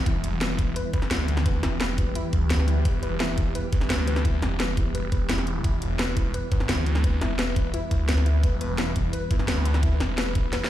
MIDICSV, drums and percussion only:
0, 0, Header, 1, 2, 480
1, 0, Start_track
1, 0, Key_signature, 1, "minor"
1, 0, Tempo, 348837
1, 87, Time_signature, 4, 2, 24, 8
1, 14720, End_track
2, 0, Start_track
2, 0, Title_t, "Drums"
2, 86, Note_on_c, 9, 36, 123
2, 87, Note_on_c, 9, 42, 103
2, 224, Note_off_c, 9, 36, 0
2, 225, Note_off_c, 9, 42, 0
2, 327, Note_on_c, 9, 42, 74
2, 465, Note_off_c, 9, 42, 0
2, 567, Note_on_c, 9, 38, 117
2, 567, Note_on_c, 9, 42, 99
2, 704, Note_off_c, 9, 38, 0
2, 704, Note_off_c, 9, 42, 0
2, 806, Note_on_c, 9, 36, 113
2, 806, Note_on_c, 9, 42, 73
2, 944, Note_off_c, 9, 36, 0
2, 944, Note_off_c, 9, 42, 0
2, 1046, Note_on_c, 9, 42, 103
2, 1184, Note_off_c, 9, 42, 0
2, 1286, Note_on_c, 9, 36, 103
2, 1286, Note_on_c, 9, 42, 76
2, 1406, Note_on_c, 9, 40, 35
2, 1424, Note_off_c, 9, 36, 0
2, 1424, Note_off_c, 9, 42, 0
2, 1526, Note_on_c, 9, 38, 122
2, 1526, Note_on_c, 9, 42, 101
2, 1543, Note_off_c, 9, 40, 0
2, 1663, Note_off_c, 9, 38, 0
2, 1663, Note_off_c, 9, 42, 0
2, 1766, Note_on_c, 9, 42, 68
2, 1885, Note_on_c, 9, 40, 51
2, 1904, Note_off_c, 9, 42, 0
2, 2005, Note_on_c, 9, 42, 96
2, 2006, Note_on_c, 9, 36, 127
2, 2023, Note_off_c, 9, 40, 0
2, 2143, Note_off_c, 9, 42, 0
2, 2144, Note_off_c, 9, 36, 0
2, 2244, Note_on_c, 9, 40, 62
2, 2244, Note_on_c, 9, 42, 71
2, 2382, Note_off_c, 9, 40, 0
2, 2382, Note_off_c, 9, 42, 0
2, 2485, Note_on_c, 9, 38, 122
2, 2485, Note_on_c, 9, 42, 94
2, 2623, Note_off_c, 9, 38, 0
2, 2623, Note_off_c, 9, 42, 0
2, 2724, Note_on_c, 9, 42, 67
2, 2726, Note_on_c, 9, 36, 112
2, 2862, Note_off_c, 9, 42, 0
2, 2864, Note_off_c, 9, 36, 0
2, 2964, Note_on_c, 9, 42, 99
2, 3102, Note_off_c, 9, 42, 0
2, 3205, Note_on_c, 9, 42, 69
2, 3206, Note_on_c, 9, 36, 110
2, 3342, Note_off_c, 9, 42, 0
2, 3344, Note_off_c, 9, 36, 0
2, 3445, Note_on_c, 9, 38, 124
2, 3445, Note_on_c, 9, 42, 98
2, 3565, Note_on_c, 9, 40, 39
2, 3582, Note_off_c, 9, 38, 0
2, 3582, Note_off_c, 9, 42, 0
2, 3685, Note_on_c, 9, 42, 69
2, 3703, Note_off_c, 9, 40, 0
2, 3823, Note_off_c, 9, 42, 0
2, 3925, Note_on_c, 9, 42, 95
2, 3926, Note_on_c, 9, 36, 127
2, 4062, Note_off_c, 9, 42, 0
2, 4064, Note_off_c, 9, 36, 0
2, 4165, Note_on_c, 9, 42, 72
2, 4303, Note_off_c, 9, 42, 0
2, 4405, Note_on_c, 9, 38, 127
2, 4405, Note_on_c, 9, 42, 92
2, 4542, Note_off_c, 9, 38, 0
2, 4542, Note_off_c, 9, 42, 0
2, 4645, Note_on_c, 9, 42, 65
2, 4647, Note_on_c, 9, 36, 118
2, 4783, Note_off_c, 9, 42, 0
2, 4784, Note_off_c, 9, 36, 0
2, 4886, Note_on_c, 9, 42, 93
2, 5024, Note_off_c, 9, 42, 0
2, 5126, Note_on_c, 9, 42, 69
2, 5127, Note_on_c, 9, 36, 116
2, 5246, Note_on_c, 9, 40, 36
2, 5263, Note_off_c, 9, 42, 0
2, 5264, Note_off_c, 9, 36, 0
2, 5367, Note_on_c, 9, 38, 127
2, 5367, Note_on_c, 9, 42, 91
2, 5384, Note_off_c, 9, 40, 0
2, 5504, Note_off_c, 9, 38, 0
2, 5504, Note_off_c, 9, 42, 0
2, 5607, Note_on_c, 9, 42, 68
2, 5728, Note_on_c, 9, 40, 50
2, 5744, Note_off_c, 9, 42, 0
2, 5847, Note_on_c, 9, 36, 127
2, 5848, Note_on_c, 9, 42, 91
2, 5865, Note_off_c, 9, 40, 0
2, 5985, Note_off_c, 9, 36, 0
2, 5985, Note_off_c, 9, 42, 0
2, 6088, Note_on_c, 9, 40, 58
2, 6088, Note_on_c, 9, 42, 66
2, 6225, Note_off_c, 9, 40, 0
2, 6225, Note_off_c, 9, 42, 0
2, 6327, Note_on_c, 9, 38, 127
2, 6327, Note_on_c, 9, 42, 90
2, 6465, Note_off_c, 9, 38, 0
2, 6465, Note_off_c, 9, 42, 0
2, 6567, Note_on_c, 9, 36, 115
2, 6567, Note_on_c, 9, 42, 63
2, 6704, Note_off_c, 9, 36, 0
2, 6705, Note_off_c, 9, 42, 0
2, 6807, Note_on_c, 9, 42, 93
2, 6945, Note_off_c, 9, 42, 0
2, 7046, Note_on_c, 9, 42, 67
2, 7047, Note_on_c, 9, 36, 114
2, 7184, Note_off_c, 9, 36, 0
2, 7184, Note_off_c, 9, 42, 0
2, 7286, Note_on_c, 9, 38, 127
2, 7286, Note_on_c, 9, 42, 90
2, 7406, Note_on_c, 9, 40, 38
2, 7423, Note_off_c, 9, 38, 0
2, 7423, Note_off_c, 9, 42, 0
2, 7526, Note_on_c, 9, 42, 67
2, 7544, Note_off_c, 9, 40, 0
2, 7663, Note_off_c, 9, 42, 0
2, 7766, Note_on_c, 9, 36, 118
2, 7766, Note_on_c, 9, 42, 92
2, 7903, Note_off_c, 9, 42, 0
2, 7904, Note_off_c, 9, 36, 0
2, 8006, Note_on_c, 9, 42, 65
2, 8144, Note_off_c, 9, 42, 0
2, 8246, Note_on_c, 9, 38, 126
2, 8246, Note_on_c, 9, 42, 92
2, 8384, Note_off_c, 9, 38, 0
2, 8384, Note_off_c, 9, 42, 0
2, 8485, Note_on_c, 9, 42, 65
2, 8486, Note_on_c, 9, 36, 108
2, 8623, Note_off_c, 9, 42, 0
2, 8624, Note_off_c, 9, 36, 0
2, 8726, Note_on_c, 9, 42, 93
2, 8864, Note_off_c, 9, 42, 0
2, 8966, Note_on_c, 9, 36, 105
2, 8967, Note_on_c, 9, 42, 66
2, 9086, Note_on_c, 9, 40, 33
2, 9104, Note_off_c, 9, 36, 0
2, 9104, Note_off_c, 9, 42, 0
2, 9206, Note_on_c, 9, 38, 120
2, 9206, Note_on_c, 9, 42, 90
2, 9223, Note_off_c, 9, 40, 0
2, 9343, Note_off_c, 9, 38, 0
2, 9343, Note_off_c, 9, 42, 0
2, 9445, Note_on_c, 9, 42, 65
2, 9566, Note_on_c, 9, 40, 45
2, 9583, Note_off_c, 9, 42, 0
2, 9686, Note_on_c, 9, 36, 117
2, 9686, Note_on_c, 9, 42, 98
2, 9704, Note_off_c, 9, 40, 0
2, 9824, Note_off_c, 9, 36, 0
2, 9824, Note_off_c, 9, 42, 0
2, 9927, Note_on_c, 9, 40, 57
2, 9927, Note_on_c, 9, 42, 71
2, 10065, Note_off_c, 9, 40, 0
2, 10065, Note_off_c, 9, 42, 0
2, 10166, Note_on_c, 9, 38, 116
2, 10166, Note_on_c, 9, 42, 91
2, 10304, Note_off_c, 9, 38, 0
2, 10304, Note_off_c, 9, 42, 0
2, 10407, Note_on_c, 9, 36, 109
2, 10407, Note_on_c, 9, 42, 67
2, 10544, Note_off_c, 9, 36, 0
2, 10544, Note_off_c, 9, 42, 0
2, 10646, Note_on_c, 9, 42, 92
2, 10784, Note_off_c, 9, 42, 0
2, 10887, Note_on_c, 9, 36, 108
2, 10887, Note_on_c, 9, 42, 68
2, 11024, Note_off_c, 9, 36, 0
2, 11024, Note_off_c, 9, 42, 0
2, 11126, Note_on_c, 9, 38, 120
2, 11126, Note_on_c, 9, 42, 93
2, 11247, Note_on_c, 9, 40, 36
2, 11264, Note_off_c, 9, 38, 0
2, 11264, Note_off_c, 9, 42, 0
2, 11367, Note_on_c, 9, 42, 69
2, 11384, Note_off_c, 9, 40, 0
2, 11504, Note_off_c, 9, 42, 0
2, 11606, Note_on_c, 9, 42, 98
2, 11607, Note_on_c, 9, 36, 116
2, 11744, Note_off_c, 9, 36, 0
2, 11744, Note_off_c, 9, 42, 0
2, 11846, Note_on_c, 9, 42, 72
2, 11984, Note_off_c, 9, 42, 0
2, 12085, Note_on_c, 9, 38, 115
2, 12085, Note_on_c, 9, 42, 95
2, 12223, Note_off_c, 9, 38, 0
2, 12223, Note_off_c, 9, 42, 0
2, 12326, Note_on_c, 9, 42, 70
2, 12327, Note_on_c, 9, 36, 100
2, 12463, Note_off_c, 9, 42, 0
2, 12464, Note_off_c, 9, 36, 0
2, 12565, Note_on_c, 9, 42, 103
2, 12703, Note_off_c, 9, 42, 0
2, 12806, Note_on_c, 9, 36, 102
2, 12806, Note_on_c, 9, 42, 72
2, 12926, Note_on_c, 9, 40, 33
2, 12943, Note_off_c, 9, 42, 0
2, 12944, Note_off_c, 9, 36, 0
2, 13046, Note_on_c, 9, 38, 112
2, 13046, Note_on_c, 9, 42, 100
2, 13064, Note_off_c, 9, 40, 0
2, 13183, Note_off_c, 9, 38, 0
2, 13183, Note_off_c, 9, 42, 0
2, 13285, Note_on_c, 9, 42, 72
2, 13406, Note_on_c, 9, 40, 47
2, 13422, Note_off_c, 9, 42, 0
2, 13525, Note_on_c, 9, 42, 104
2, 13526, Note_on_c, 9, 36, 117
2, 13543, Note_off_c, 9, 40, 0
2, 13663, Note_off_c, 9, 42, 0
2, 13664, Note_off_c, 9, 36, 0
2, 13766, Note_on_c, 9, 40, 59
2, 13766, Note_on_c, 9, 42, 72
2, 13903, Note_off_c, 9, 40, 0
2, 13903, Note_off_c, 9, 42, 0
2, 14006, Note_on_c, 9, 38, 115
2, 14006, Note_on_c, 9, 42, 103
2, 14144, Note_off_c, 9, 38, 0
2, 14144, Note_off_c, 9, 42, 0
2, 14245, Note_on_c, 9, 42, 70
2, 14246, Note_on_c, 9, 36, 107
2, 14383, Note_off_c, 9, 42, 0
2, 14384, Note_off_c, 9, 36, 0
2, 14486, Note_on_c, 9, 38, 72
2, 14486, Note_on_c, 9, 42, 102
2, 14623, Note_off_c, 9, 38, 0
2, 14623, Note_off_c, 9, 42, 0
2, 14646, Note_on_c, 9, 38, 84
2, 14720, Note_off_c, 9, 38, 0
2, 14720, End_track
0, 0, End_of_file